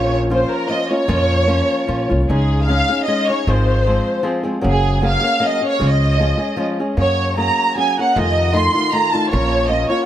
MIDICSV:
0, 0, Header, 1, 4, 480
1, 0, Start_track
1, 0, Key_signature, -5, "major"
1, 0, Tempo, 394218
1, 1322, Time_signature, 3, 2, 24, 8
1, 4219, Tempo, 389610
1, 12340, End_track
2, 0, Start_track
2, 0, Title_t, "Violin section"
2, 0, Program_c, 0, 48
2, 0, Note_on_c, 0, 73, 81
2, 150, Note_off_c, 0, 73, 0
2, 397, Note_on_c, 0, 72, 75
2, 619, Note_off_c, 0, 72, 0
2, 647, Note_on_c, 0, 70, 86
2, 857, Note_off_c, 0, 70, 0
2, 865, Note_on_c, 0, 75, 92
2, 979, Note_off_c, 0, 75, 0
2, 994, Note_on_c, 0, 75, 57
2, 1083, Note_on_c, 0, 73, 86
2, 1092, Note_off_c, 0, 75, 0
2, 2539, Note_off_c, 0, 73, 0
2, 2783, Note_on_c, 0, 68, 66
2, 3228, Note_off_c, 0, 68, 0
2, 3249, Note_on_c, 0, 77, 92
2, 3700, Note_off_c, 0, 77, 0
2, 3708, Note_on_c, 0, 75, 89
2, 3959, Note_off_c, 0, 75, 0
2, 3991, Note_on_c, 0, 73, 80
2, 4216, Note_off_c, 0, 73, 0
2, 4255, Note_on_c, 0, 72, 75
2, 5197, Note_off_c, 0, 72, 0
2, 5715, Note_on_c, 0, 68, 82
2, 6135, Note_off_c, 0, 68, 0
2, 6213, Note_on_c, 0, 77, 92
2, 6655, Note_off_c, 0, 77, 0
2, 6668, Note_on_c, 0, 75, 91
2, 6898, Note_off_c, 0, 75, 0
2, 6955, Note_on_c, 0, 73, 84
2, 7137, Note_off_c, 0, 73, 0
2, 7172, Note_on_c, 0, 75, 78
2, 8094, Note_off_c, 0, 75, 0
2, 8568, Note_on_c, 0, 73, 87
2, 9008, Note_off_c, 0, 73, 0
2, 9049, Note_on_c, 0, 82, 80
2, 9487, Note_off_c, 0, 82, 0
2, 9539, Note_on_c, 0, 80, 85
2, 9780, Note_off_c, 0, 80, 0
2, 9800, Note_on_c, 0, 78, 74
2, 9992, Note_off_c, 0, 78, 0
2, 10000, Note_on_c, 0, 75, 84
2, 10474, Note_off_c, 0, 75, 0
2, 10488, Note_on_c, 0, 84, 86
2, 10936, Note_on_c, 0, 82, 92
2, 10954, Note_off_c, 0, 84, 0
2, 11181, Note_on_c, 0, 81, 82
2, 11192, Note_off_c, 0, 82, 0
2, 11398, Note_on_c, 0, 73, 82
2, 11412, Note_off_c, 0, 81, 0
2, 11852, Note_off_c, 0, 73, 0
2, 11880, Note_on_c, 0, 75, 85
2, 12134, Note_on_c, 0, 73, 77
2, 12143, Note_off_c, 0, 75, 0
2, 12277, Note_off_c, 0, 73, 0
2, 12340, End_track
3, 0, Start_track
3, 0, Title_t, "Nylon-string guitar"
3, 0, Program_c, 1, 24
3, 0, Note_on_c, 1, 46, 57
3, 0, Note_on_c, 1, 53, 60
3, 0, Note_on_c, 1, 58, 71
3, 0, Note_on_c, 1, 61, 63
3, 0, Note_on_c, 1, 65, 77
3, 349, Note_off_c, 1, 53, 0
3, 362, Note_off_c, 1, 58, 0
3, 363, Note_on_c, 1, 53, 59
3, 367, Note_off_c, 1, 46, 0
3, 367, Note_off_c, 1, 65, 0
3, 375, Note_off_c, 1, 61, 0
3, 377, Note_on_c, 1, 58, 65
3, 380, Note_on_c, 1, 61, 61
3, 382, Note_on_c, 1, 65, 73
3, 825, Note_off_c, 1, 58, 0
3, 826, Note_off_c, 1, 53, 0
3, 839, Note_off_c, 1, 61, 0
3, 840, Note_on_c, 1, 53, 51
3, 840, Note_on_c, 1, 58, 59
3, 843, Note_on_c, 1, 61, 57
3, 846, Note_off_c, 1, 65, 0
3, 861, Note_on_c, 1, 65, 58
3, 1086, Note_off_c, 1, 65, 0
3, 1090, Note_off_c, 1, 61, 0
3, 1096, Note_off_c, 1, 53, 0
3, 1096, Note_off_c, 1, 58, 0
3, 1100, Note_on_c, 1, 65, 50
3, 1105, Note_on_c, 1, 61, 48
3, 1111, Note_on_c, 1, 58, 42
3, 1300, Note_off_c, 1, 61, 0
3, 1303, Note_off_c, 1, 58, 0
3, 1309, Note_off_c, 1, 65, 0
3, 1312, Note_on_c, 1, 53, 61
3, 1313, Note_on_c, 1, 46, 64
3, 1315, Note_on_c, 1, 61, 74
3, 1318, Note_on_c, 1, 58, 69
3, 1324, Note_on_c, 1, 65, 63
3, 1774, Note_off_c, 1, 53, 0
3, 1778, Note_off_c, 1, 58, 0
3, 1788, Note_on_c, 1, 53, 57
3, 1789, Note_off_c, 1, 61, 0
3, 1793, Note_on_c, 1, 58, 59
3, 1796, Note_off_c, 1, 46, 0
3, 1796, Note_off_c, 1, 65, 0
3, 1804, Note_on_c, 1, 61, 67
3, 1811, Note_on_c, 1, 65, 60
3, 2260, Note_off_c, 1, 53, 0
3, 2271, Note_off_c, 1, 58, 0
3, 2275, Note_off_c, 1, 61, 0
3, 2275, Note_on_c, 1, 53, 53
3, 2278, Note_off_c, 1, 65, 0
3, 2286, Note_on_c, 1, 58, 57
3, 2289, Note_on_c, 1, 61, 59
3, 2293, Note_on_c, 1, 65, 74
3, 2535, Note_off_c, 1, 65, 0
3, 2541, Note_off_c, 1, 53, 0
3, 2546, Note_off_c, 1, 61, 0
3, 2547, Note_off_c, 1, 58, 0
3, 2550, Note_on_c, 1, 65, 49
3, 2560, Note_on_c, 1, 61, 39
3, 2572, Note_on_c, 1, 58, 36
3, 2776, Note_off_c, 1, 65, 0
3, 2781, Note_off_c, 1, 61, 0
3, 2787, Note_off_c, 1, 58, 0
3, 2790, Note_on_c, 1, 49, 56
3, 2795, Note_on_c, 1, 56, 55
3, 2800, Note_on_c, 1, 61, 54
3, 2805, Note_on_c, 1, 63, 67
3, 2807, Note_on_c, 1, 68, 57
3, 3265, Note_off_c, 1, 49, 0
3, 3267, Note_off_c, 1, 61, 0
3, 3269, Note_off_c, 1, 56, 0
3, 3273, Note_off_c, 1, 63, 0
3, 3274, Note_on_c, 1, 56, 62
3, 3282, Note_on_c, 1, 61, 55
3, 3292, Note_off_c, 1, 68, 0
3, 3297, Note_on_c, 1, 68, 59
3, 3299, Note_on_c, 1, 63, 51
3, 3508, Note_off_c, 1, 68, 0
3, 3519, Note_off_c, 1, 63, 0
3, 3521, Note_off_c, 1, 56, 0
3, 3523, Note_off_c, 1, 61, 0
3, 3523, Note_on_c, 1, 68, 49
3, 3534, Note_on_c, 1, 63, 40
3, 3537, Note_on_c, 1, 61, 43
3, 3737, Note_off_c, 1, 61, 0
3, 3739, Note_off_c, 1, 63, 0
3, 3743, Note_off_c, 1, 68, 0
3, 3750, Note_on_c, 1, 56, 53
3, 3751, Note_on_c, 1, 61, 58
3, 3754, Note_on_c, 1, 63, 50
3, 3755, Note_on_c, 1, 68, 59
3, 3999, Note_off_c, 1, 56, 0
3, 4000, Note_off_c, 1, 61, 0
3, 4001, Note_off_c, 1, 63, 0
3, 4002, Note_off_c, 1, 68, 0
3, 4015, Note_on_c, 1, 68, 41
3, 4032, Note_on_c, 1, 61, 32
3, 4034, Note_on_c, 1, 63, 38
3, 4228, Note_on_c, 1, 44, 60
3, 4229, Note_off_c, 1, 68, 0
3, 4232, Note_on_c, 1, 51, 56
3, 4235, Note_on_c, 1, 53, 58
3, 4236, Note_off_c, 1, 63, 0
3, 4237, Note_off_c, 1, 61, 0
3, 4241, Note_on_c, 1, 60, 57
3, 4243, Note_on_c, 1, 56, 66
3, 4243, Note_on_c, 1, 68, 57
3, 4692, Note_off_c, 1, 53, 0
3, 4704, Note_off_c, 1, 44, 0
3, 4706, Note_off_c, 1, 51, 0
3, 4707, Note_on_c, 1, 53, 60
3, 4708, Note_off_c, 1, 56, 0
3, 4708, Note_off_c, 1, 60, 0
3, 4713, Note_on_c, 1, 56, 53
3, 4722, Note_on_c, 1, 60, 57
3, 4726, Note_off_c, 1, 68, 0
3, 4731, Note_on_c, 1, 68, 59
3, 5145, Note_off_c, 1, 53, 0
3, 5160, Note_off_c, 1, 60, 0
3, 5160, Note_on_c, 1, 53, 67
3, 5163, Note_off_c, 1, 56, 0
3, 5168, Note_on_c, 1, 56, 65
3, 5175, Note_off_c, 1, 68, 0
3, 5175, Note_on_c, 1, 60, 57
3, 5180, Note_on_c, 1, 68, 62
3, 5397, Note_off_c, 1, 68, 0
3, 5411, Note_off_c, 1, 60, 0
3, 5412, Note_on_c, 1, 68, 53
3, 5415, Note_off_c, 1, 56, 0
3, 5422, Note_off_c, 1, 53, 0
3, 5426, Note_on_c, 1, 60, 55
3, 5430, Note_on_c, 1, 56, 46
3, 5437, Note_on_c, 1, 53, 40
3, 5629, Note_off_c, 1, 56, 0
3, 5632, Note_off_c, 1, 53, 0
3, 5633, Note_off_c, 1, 68, 0
3, 5634, Note_on_c, 1, 58, 69
3, 5637, Note_on_c, 1, 54, 61
3, 5643, Note_off_c, 1, 60, 0
3, 5648, Note_on_c, 1, 61, 61
3, 5648, Note_on_c, 1, 68, 64
3, 6105, Note_off_c, 1, 54, 0
3, 6120, Note_off_c, 1, 58, 0
3, 6120, Note_on_c, 1, 54, 63
3, 6135, Note_on_c, 1, 58, 60
3, 6136, Note_off_c, 1, 61, 0
3, 6141, Note_on_c, 1, 61, 69
3, 6143, Note_off_c, 1, 68, 0
3, 6148, Note_on_c, 1, 68, 65
3, 6355, Note_off_c, 1, 68, 0
3, 6369, Note_on_c, 1, 68, 46
3, 6370, Note_off_c, 1, 61, 0
3, 6379, Note_off_c, 1, 58, 0
3, 6384, Note_off_c, 1, 54, 0
3, 6385, Note_on_c, 1, 61, 45
3, 6394, Note_on_c, 1, 58, 39
3, 6587, Note_off_c, 1, 58, 0
3, 6597, Note_off_c, 1, 68, 0
3, 6599, Note_off_c, 1, 61, 0
3, 6602, Note_on_c, 1, 58, 57
3, 6603, Note_on_c, 1, 54, 54
3, 6612, Note_on_c, 1, 68, 59
3, 6614, Note_on_c, 1, 61, 69
3, 6852, Note_off_c, 1, 68, 0
3, 6861, Note_off_c, 1, 61, 0
3, 6865, Note_off_c, 1, 54, 0
3, 6865, Note_off_c, 1, 58, 0
3, 6867, Note_on_c, 1, 68, 46
3, 6875, Note_on_c, 1, 61, 42
3, 6888, Note_on_c, 1, 58, 32
3, 7078, Note_off_c, 1, 68, 0
3, 7082, Note_off_c, 1, 61, 0
3, 7084, Note_on_c, 1, 49, 54
3, 7086, Note_on_c, 1, 53, 55
3, 7087, Note_off_c, 1, 58, 0
3, 7092, Note_on_c, 1, 56, 58
3, 7093, Note_on_c, 1, 68, 64
3, 7097, Note_on_c, 1, 61, 74
3, 7561, Note_off_c, 1, 53, 0
3, 7567, Note_off_c, 1, 49, 0
3, 7571, Note_off_c, 1, 56, 0
3, 7572, Note_off_c, 1, 68, 0
3, 7574, Note_off_c, 1, 61, 0
3, 7575, Note_on_c, 1, 53, 56
3, 7589, Note_on_c, 1, 56, 58
3, 7593, Note_on_c, 1, 61, 57
3, 7598, Note_on_c, 1, 68, 69
3, 7790, Note_off_c, 1, 68, 0
3, 7805, Note_on_c, 1, 68, 51
3, 7807, Note_off_c, 1, 61, 0
3, 7818, Note_off_c, 1, 56, 0
3, 7821, Note_on_c, 1, 61, 41
3, 7830, Note_off_c, 1, 53, 0
3, 7833, Note_on_c, 1, 56, 40
3, 8032, Note_off_c, 1, 61, 0
3, 8035, Note_off_c, 1, 56, 0
3, 8039, Note_on_c, 1, 53, 64
3, 8040, Note_off_c, 1, 68, 0
3, 8046, Note_on_c, 1, 61, 62
3, 8050, Note_on_c, 1, 56, 69
3, 8055, Note_on_c, 1, 68, 62
3, 8307, Note_off_c, 1, 53, 0
3, 8308, Note_off_c, 1, 61, 0
3, 8313, Note_off_c, 1, 56, 0
3, 8315, Note_off_c, 1, 68, 0
3, 8323, Note_on_c, 1, 61, 43
3, 8328, Note_on_c, 1, 68, 49
3, 8346, Note_on_c, 1, 56, 44
3, 8528, Note_off_c, 1, 56, 0
3, 8532, Note_off_c, 1, 61, 0
3, 8533, Note_on_c, 1, 58, 49
3, 8534, Note_on_c, 1, 54, 46
3, 8541, Note_off_c, 1, 68, 0
3, 8547, Note_on_c, 1, 61, 60
3, 8556, Note_on_c, 1, 68, 61
3, 9007, Note_off_c, 1, 54, 0
3, 9017, Note_off_c, 1, 61, 0
3, 9021, Note_on_c, 1, 54, 53
3, 9023, Note_off_c, 1, 58, 0
3, 9032, Note_on_c, 1, 61, 51
3, 9035, Note_off_c, 1, 68, 0
3, 9037, Note_on_c, 1, 58, 56
3, 9047, Note_on_c, 1, 68, 51
3, 9488, Note_off_c, 1, 54, 0
3, 9503, Note_on_c, 1, 54, 56
3, 9506, Note_off_c, 1, 58, 0
3, 9512, Note_off_c, 1, 61, 0
3, 9514, Note_off_c, 1, 68, 0
3, 9521, Note_on_c, 1, 58, 52
3, 9529, Note_on_c, 1, 68, 61
3, 9533, Note_on_c, 1, 61, 59
3, 9762, Note_off_c, 1, 54, 0
3, 9771, Note_off_c, 1, 58, 0
3, 9775, Note_off_c, 1, 68, 0
3, 9777, Note_off_c, 1, 61, 0
3, 9794, Note_on_c, 1, 68, 46
3, 9800, Note_on_c, 1, 61, 43
3, 9808, Note_on_c, 1, 58, 35
3, 9995, Note_on_c, 1, 41, 56
3, 10004, Note_off_c, 1, 68, 0
3, 10005, Note_off_c, 1, 58, 0
3, 10006, Note_off_c, 1, 61, 0
3, 10007, Note_on_c, 1, 48, 64
3, 10010, Note_on_c, 1, 57, 47
3, 10011, Note_on_c, 1, 63, 70
3, 10013, Note_on_c, 1, 51, 53
3, 10018, Note_on_c, 1, 65, 50
3, 10443, Note_off_c, 1, 51, 0
3, 10451, Note_off_c, 1, 63, 0
3, 10454, Note_off_c, 1, 57, 0
3, 10458, Note_on_c, 1, 51, 51
3, 10466, Note_on_c, 1, 63, 64
3, 10467, Note_off_c, 1, 65, 0
3, 10468, Note_on_c, 1, 57, 57
3, 10471, Note_off_c, 1, 41, 0
3, 10477, Note_off_c, 1, 48, 0
3, 10482, Note_on_c, 1, 65, 60
3, 10698, Note_off_c, 1, 65, 0
3, 10704, Note_off_c, 1, 63, 0
3, 10711, Note_off_c, 1, 51, 0
3, 10712, Note_off_c, 1, 57, 0
3, 10713, Note_on_c, 1, 65, 49
3, 10719, Note_on_c, 1, 63, 49
3, 10726, Note_on_c, 1, 51, 44
3, 10726, Note_on_c, 1, 57, 41
3, 10934, Note_off_c, 1, 51, 0
3, 10937, Note_off_c, 1, 57, 0
3, 10939, Note_off_c, 1, 63, 0
3, 10939, Note_off_c, 1, 65, 0
3, 10948, Note_on_c, 1, 51, 53
3, 10952, Note_on_c, 1, 57, 58
3, 10953, Note_on_c, 1, 63, 55
3, 10960, Note_on_c, 1, 65, 54
3, 11185, Note_off_c, 1, 65, 0
3, 11198, Note_off_c, 1, 51, 0
3, 11200, Note_off_c, 1, 57, 0
3, 11200, Note_on_c, 1, 65, 51
3, 11201, Note_off_c, 1, 63, 0
3, 11216, Note_on_c, 1, 57, 38
3, 11216, Note_on_c, 1, 63, 48
3, 11217, Note_on_c, 1, 51, 39
3, 11421, Note_off_c, 1, 65, 0
3, 11425, Note_on_c, 1, 46, 50
3, 11426, Note_off_c, 1, 57, 0
3, 11429, Note_off_c, 1, 51, 0
3, 11429, Note_off_c, 1, 63, 0
3, 11431, Note_on_c, 1, 58, 66
3, 11434, Note_on_c, 1, 53, 52
3, 11439, Note_on_c, 1, 61, 58
3, 11442, Note_on_c, 1, 65, 71
3, 11861, Note_off_c, 1, 53, 0
3, 11867, Note_off_c, 1, 58, 0
3, 11876, Note_on_c, 1, 53, 50
3, 11877, Note_off_c, 1, 65, 0
3, 11879, Note_off_c, 1, 61, 0
3, 11881, Note_on_c, 1, 58, 64
3, 11892, Note_on_c, 1, 65, 60
3, 11894, Note_on_c, 1, 61, 59
3, 11900, Note_off_c, 1, 46, 0
3, 12126, Note_off_c, 1, 65, 0
3, 12130, Note_off_c, 1, 61, 0
3, 12141, Note_off_c, 1, 53, 0
3, 12141, Note_on_c, 1, 65, 55
3, 12144, Note_off_c, 1, 58, 0
3, 12145, Note_on_c, 1, 61, 42
3, 12160, Note_on_c, 1, 58, 43
3, 12323, Note_off_c, 1, 58, 0
3, 12332, Note_off_c, 1, 61, 0
3, 12340, Note_off_c, 1, 65, 0
3, 12340, End_track
4, 0, Start_track
4, 0, Title_t, "Upright bass"
4, 0, Program_c, 2, 32
4, 0, Note_on_c, 2, 34, 96
4, 516, Note_off_c, 2, 34, 0
4, 1322, Note_on_c, 2, 41, 91
4, 1949, Note_off_c, 2, 41, 0
4, 2297, Note_on_c, 2, 34, 59
4, 2527, Note_off_c, 2, 34, 0
4, 2573, Note_on_c, 2, 36, 67
4, 2766, Note_off_c, 2, 36, 0
4, 2794, Note_on_c, 2, 37, 83
4, 3414, Note_off_c, 2, 37, 0
4, 4228, Note_on_c, 2, 32, 80
4, 4849, Note_off_c, 2, 32, 0
4, 5671, Note_on_c, 2, 30, 87
4, 6290, Note_off_c, 2, 30, 0
4, 7111, Note_on_c, 2, 37, 84
4, 7730, Note_off_c, 2, 37, 0
4, 8538, Note_on_c, 2, 42, 77
4, 9168, Note_off_c, 2, 42, 0
4, 10007, Note_on_c, 2, 41, 87
4, 10621, Note_off_c, 2, 41, 0
4, 11447, Note_on_c, 2, 34, 93
4, 12061, Note_off_c, 2, 34, 0
4, 12340, End_track
0, 0, End_of_file